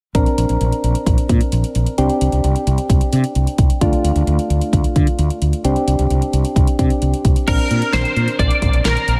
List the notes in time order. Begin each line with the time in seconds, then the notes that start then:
0.15 A#1 C4 D4 A#4, kick, closed hi-hat
0.26 closed hi-hat
0.38 A#1, closed hi-hat
0.49 A#1, closed hi-hat
0.61 A#1, closed hi-hat
0.72 closed hi-hat
0.84 A#1, closed hi-hat
0.95 closed hi-hat
1.06 A#1, kick, closed hi-hat
1.18 closed hi-hat
1.29 A#2, kick, closed hi-hat
1.41 closed hi-hat
1.52 A#1, closed hi-hat
1.64 closed hi-hat
1.75 A#1, closed hi-hat
1.86 closed hi-hat
1.98 C2 C4 D4 G4, closed hi-hat
2.10 closed hi-hat
2.21 C2, closed hi-hat
2.32 C2, closed hi-hat
2.44 C2, closed hi-hat
2.56 closed hi-hat
2.67 C2, closed hi-hat
2.78 closed hi-hat
2.90 C2, kick, closed hi-hat
3.01 closed hi-hat
3.13 C3, closed hi-hat
3.24 closed hi-hat
3.35 C2, closed hi-hat
3.47 closed hi-hat
3.58 C2, kick, closed hi-hat
3.70 closed hi-hat
3.81 D2 A3 D4 F4, kick, closed hi-hat
3.93 closed hi-hat
4.04 D2, closed hi-hat
4.16 D2, closed hi-hat
4.27 D2, closed hi-hat
4.39 closed hi-hat
4.50 D2, closed hi-hat
4.61 closed hi-hat
4.73 D2, kick, closed hi-hat
4.84 closed hi-hat
4.96 D3, kick, closed hi-hat
5.07 closed hi-hat
5.19 D2, closed hi-hat
5.30 closed hi-hat
5.42 D2, closed hi-hat
5.53 closed hi-hat
5.64 C2 C4 D4 G4, closed hi-hat
5.76 closed hi-hat
5.87 C2, closed hi-hat
5.99 C2, closed hi-hat
6.10 C2, closed hi-hat
6.22 closed hi-hat
6.33 C2, closed hi-hat
6.45 closed hi-hat
6.56 C2, kick, closed hi-hat
6.67 closed hi-hat
6.79 C3 C4 D4 G4, kick, closed hi-hat
6.90 closed hi-hat
7.02 C2, closed hi-hat
7.14 closed hi-hat
7.25 C2, kick, closed hi-hat
7.36 closed hi-hat
7.48 A#1 C4 D4 A#4, kick, closed hi-hat, crash
7.59 closed hi-hat
7.71 A#2, closed hi-hat
7.82 closed hi-hat
7.93 A#1 C5, snare, closed hi-hat
8.05 closed hi-hat
8.16 A#2, closed hi-hat
8.28 closed hi-hat
8.39 A#1 D5, kick, closed hi-hat
8.51 closed hi-hat
8.62 A#1, kick, closed hi-hat
8.73 A#1, closed hi-hat
8.85 A#1 A#4, snare, closed hi-hat
8.97 closed hi-hat
9.08 A#1, closed hi-hat